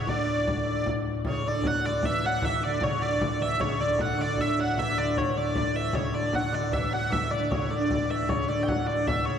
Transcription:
Already playing: pipe organ D2 A2
0.07 lute D3, hurdy-gurdy D5, frame drum
0.47 frame drum
0.67 frame drum
0.86 frame drum
1.05 frame drum
1.25 pipe organ D2 A2, lute C#3, hurdy-gurdy C#5, frame drum
1.45 lute D3, hurdy-gurdy D5, frame drum
1.64 lute F#3, hurdy-gurdy F#5, frame drum
1.86 lute D3, hurdy-gurdy D5
2.03 lute E3, hurdy-gurdy E5, frame drum
2.24 lute F#3, hurdy-gurdy F#5
2.42 lute E3, hurdy-gurdy E5, frame drum
2.63 lute D3, hurdy-gurdy D5, frame drum
2.81 lute C#3, hurdy-gurdy C#5, frame drum
3.01 lute D3, hurdy-gurdy D5
3.21 lute D3, hurdy-gurdy D5, frame drum
3.41 lute E3, hurdy-gurdy E5
3.60 lute C#3, hurdy-gurdy C#5, frame drum
3.79 lute D3, hurdy-gurdy D5, frame drum
3.99 hurdy-gurdy F#5, frame drum
4.18 lute D3, hurdy-gurdy D5
4.38 hurdy-gurdy E5, frame drum
4.59 lute F#3, hurdy-gurdy F#5
4.77 lute E3, hurdy-gurdy E5, frame drum
4.97 lute D3, hurdy-gurdy D5
5.17 hurdy-gurdy C#5, frame drum
5.29 lute E3
5.36 lute D3, hurdy-gurdy D5, frame drum
5.55 hurdy-gurdy D5, frame drum
5.75 lute E3, hurdy-gurdy E5
5.93 pipe organ D2 A2, lute C#3, hurdy-gurdy C#5, frame drum
6.13 lute D3, hurdy-gurdy D5, frame drum
6.33 lute F#3, hurdy-gurdy F#5, frame drum
6.52 lute D3, hurdy-gurdy D5
6.71 lute E3, hurdy-gurdy E5, frame drum
6.91 lute F#3, hurdy-gurdy F#5
7.10 lute E3, hurdy-gurdy E5, frame drum
7.31 lute D3, hurdy-gurdy D5, frame drum
7.50 lute C#3, hurdy-gurdy C#5, frame drum
7.70 lute D3, hurdy-gurdy D5
7.89 lute D3, frame drum
8.09 lute E3, hurdy-gurdy E5
8.29 lute C#3, hurdy-gurdy C#5, frame drum
8.48 lute D3, hurdy-gurdy D5, frame drum
8.63 hurdy-gurdy G5
8.67 lute F#3, hurdy-gurdy F#5, frame drum
8.87 lute D3, hurdy-gurdy D5
9.07 lute E3, hurdy-gurdy E5, frame drum
9.25 lute C#3, hurdy-gurdy C#5

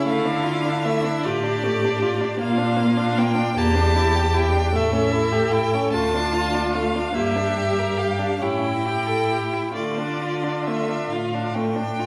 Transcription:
Already playing: viola E4
0.06 cello D3, violin A3 F5
0.25 violin D4
0.44 violin F4
0.65 violin D4
0.85 violin A3 E5
1.04 violin D4
1.24 cello A2, violin F4 D5, viola G4
1.43 violin D4
1.64 violin A3
1.85 violin D4
2.02 violin F4
2.21 violin D4
2.40 cello A#2, violin A#3 F5, viola F4
2.58 violin D4
2.77 violin A#3
2.97 violin D4
3.18 violin A#3 G5
3.35 violin D4
3.57 cello E2, violin A#3 A5, viola G4
3.75 violin D4
3.96 violin E4
4.15 violin G4
4.34 violin E4 G5
4.53 violin D4
4.73 cello A2, violin A3 E5, viola A4
4.92 violin C#4
5.12 violin E4
5.32 violin G4
5.52 violin E4 G5
5.74 violin C#4
5.93 cello D2, violin A3 A5, viola F4
6.14 violin D4
6.33 violin F4
6.55 violin D4
6.73 violin A3 F5
6.95 violin D4
7.15 cello G2, violin A#3 E5, viola G4
7.36 violin D4
7.57 violin G4
7.79 violin A#4
7.98 violin G4 F5
8.19 violin D4
8.40 cello A2, violin C#4 G5, viola E4
8.63 violin E4
8.86 violin G4
9.07 violin A4
9.31 violin G4
9.53 violin E4
9.74 cello D3, violin A3 D5, viola F4
9.97 violin D4
10.22 violin F4
10.43 violin D4
10.65 violin A3 E5
10.89 violin D4
11.10 cello A2, violin F4 F5
11.34 violin D4
11.54 violin A3 G5
11.76 violin D4
11.99 violin F4

